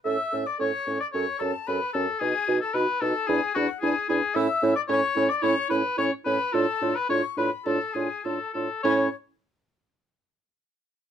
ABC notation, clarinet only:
X:1
M:4/4
L:1/8
Q:1/4=110
K:A
V:1 name="Clarinet"
A A A A A A A A | F F F F E E E E | E E E E E E E E | =F F F F F F F F |
E z6 z |]